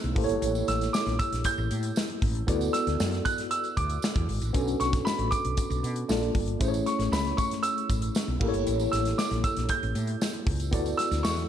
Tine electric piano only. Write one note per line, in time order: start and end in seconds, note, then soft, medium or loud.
0.00 0.12 A3 medium
0.00 0.12 C#4 medium
0.00 0.13 E4 medium
0.00 0.13 G#4 medium
0.00 0.13 C#5 medium
0.15 2.18 A#3 medium
0.15 2.18 E4 medium
0.15 2.19 G4 medium
0.15 2.19 A4 medium
0.15 0.23 C5 medium
0.24 2.22 C#5 medium
2.47 4.50 B3 medium
2.47 4.50 E4 medium
2.47 4.50 F#4 medium
2.47 4.51 A4 medium
2.47 4.51 D5 medium
4.53 6.05 B3 medium
4.53 6.07 C#4 medium
4.53 6.06 D4 medium
4.53 6.06 F#4 medium
4.53 6.06 A4 medium
6.09 6.60 A#3 medium
6.09 6.61 D4 medium
6.09 6.61 F4 medium
6.09 6.61 A4 medium
6.09 6.61 D5 medium
6.59 8.37 A3 medium
6.59 8.37 C#4 medium
6.59 8.37 E4 medium
6.59 8.38 G#4 medium
6.59 6.67 C5 medium
6.68 8.41 C#5 medium
8.40 10.42 A#3 medium
8.40 10.43 E4 medium
8.40 10.43 G4 medium
8.40 10.43 A4 medium
8.40 8.48 A#4 medium
8.48 10.47 C#5 medium
10.71 11.49 B3 medium
10.71 11.49 E4 medium
10.71 11.49 F#4 medium
10.71 11.49 A4 medium
10.71 11.49 D5 medium